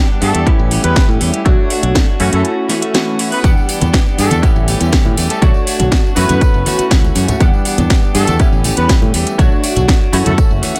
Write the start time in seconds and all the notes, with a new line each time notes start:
Already playing: G3 B3 D4 F#5
0.09 D4 G4
0.21 G2 A3 B3 D4 G4 A4, open hi-hat
0.34 E2 D4 G4, closed hi-hat
0.46 E3 G3 A3 B3 C#4 E4 G4, muted fingered electric bass stroke, kick, closed hi-hat
0.59 A1
0.70 E3 A3 C#4 G4, open hi-hat
0.83 E2 A3 B3 C#4 G4 B4, closed hi-hat
0.96 E3 A3 C#4 G4, kick, snare, closed hi-hat
1.09 A2
1.20 E2 E3 A3 C#4 G4, open hi-hat
1.33 A3 C#4 G4, closed hi-hat
1.45 B1 A3 D4 F#4 C#5, kick, closed hi-hat
1.70 A3 D4 F#4, open hi-hat
1.83 B1 D4 F#4, closed hi-hat
1.95 A3 D4 F#4, kick, snare, closed hi-hat
2.07 D4 F#4
2.19 F#2 E3 A3 C#4 E4 F#4, open hi-hat
2.32 F#2 A3 C#4 F#4 A4, closed hi-hat
2.45 A3 A4, closed hi-hat
2.69 E3 A3 C#4 F#4, snare, open hi-hat
2.82 A3 C#4 F#4, closed hi-hat
2.94 E3 A3 C#4 F#4, snare, closed hi-hat
3.19 E3 A3 C#4 F#4, open hi-hat
3.31 B3 F#4 B4, open hi-hat
3.43 E2 E3 G3 B3 D4 G4 F#5, kick, closed hi-hat, tambourine, high conga
3.57 tambourine
3.68 E3 B3 D4 G4, open hi-hat, tambourine
3.81 E2 B3 D4 G4, closed hi-hat, tambourine, high conga, low conga
3.93 E3 B3 D4 G4, kick, snare, closed hi-hat, tambourine
4.05 B3 D4 G4, tambourine
4.18 G2 E3 A3 B3 D4 G4 A4, open hi-hat, tambourine
4.30 E2 B3 D4 G4, closed hi-hat, tambourine, high conga
4.42 E3 G3 A3 B3 C#4 E4 G4, muted fingered electric bass stroke, kick, closed hi-hat, tambourine
4.56 A1, tambourine
4.67 E3 A3 C#4 G4, open hi-hat, tambourine, high conga
4.80 E2 A3 C#4 G4, closed hi-hat, tambourine
4.92 E3 A3 C#4 G4, kick, snare, closed hi-hat, tambourine
5.05 A2, tambourine, high conga
5.17 E2 E3 A3 C#4 G4, open hi-hat, tambourine
5.29 A3 C#4 G4 A4, closed hi-hat, tambourine
5.41 B1 A3 D4 F#4 A4 C#5, kick, closed hi-hat, tambourine, high conga
5.54 tambourine
5.66 A3 D4 F#4, open hi-hat, tambourine
5.79 B1 D4 F#4, closed hi-hat, tambourine, high conga, low conga
5.91 A3 D4 F#4, kick, snare, closed hi-hat, tambourine
6.04 D4 F#4, tambourine
6.16 F#2 E3 A3 B3 C#4 E4 F#4 B4, open hi-hat, tambourine
6.29 F#2 A3 C#4 F#4, closed hi-hat, tambourine, high conga
6.41 kick, closed hi-hat, tambourine
6.54 F#1, tambourine
6.65 E3 A3 C#4 F#4, open hi-hat, tambourine, high conga
6.78 A3 C#4 F#4, muted fingered electric bass stroke, closed hi-hat, tambourine
6.90 C#2 E3 A3 C#4 F#4, kick, snare, closed hi-hat, tambourine
7.04 tambourine, high conga
7.15 F#2 E3 A3 C#4 F#4, open hi-hat, tambourine
7.28 A3 C#4 F#4, closed hi-hat, tambourine, low conga
7.40 E2 E3 G3 B3 D4 G4 F#5, kick, closed hi-hat, tambourine, high conga
7.53 tambourine
7.65 E3 B3 D4 G4, open hi-hat, tambourine
7.78 E2 B3 D4 G4, closed hi-hat, tambourine, high conga, low conga
7.90 E3 B3 D4 G4, kick, snare, closed hi-hat, tambourine
8.03 B3 D4 G4, tambourine
8.14 G2 E3 A3 B3 D4 G4 A4, open hi-hat, tambourine
8.27 E2 B3 D4 G4, closed hi-hat, tambourine, high conga
8.39 E3 G3 A3 B3 C#4 E4 G4, muted fingered electric bass stroke, kick, closed hi-hat, tambourine
8.53 A1, tambourine
8.64 E3 A3 C#4 G4, open hi-hat, tambourine, high conga
8.77 E2 A3 B3 C#4 G4 B4, closed hi-hat, tambourine
8.89 E3 A3 C#4 G4, kick, snare, closed hi-hat, tambourine
9.02 A2, tambourine, high conga
9.13 E2 E3 A3 C#4 G4, open hi-hat, tambourine
9.26 closed hi-hat, tambourine
9.38 B1 A3 D4 F#4 C#5, kick, closed hi-hat, tambourine, high conga
9.52 tambourine
9.63 A3 D4 F#4, open hi-hat, tambourine
9.76 B1 D4 F#4, closed hi-hat, tambourine, high conga, low conga
9.88 A3 D4 F#4, kick, snare, closed hi-hat, tambourine
10.00 D4 F#4, tambourine
10.12 F#2 E3 A3 C#4 E4 F#4, open hi-hat, tambourine
10.25 F#2 A3 C#4 F#4 A4, closed hi-hat, tambourine, high conga
10.38 A3 A4, kick, closed hi-hat, tambourine
10.51 F#1, tambourine
10.62 E3 A3 C#4 F#4, open hi-hat, tambourine, high conga
10.75 C#4 F#4, closed hi-hat, tambourine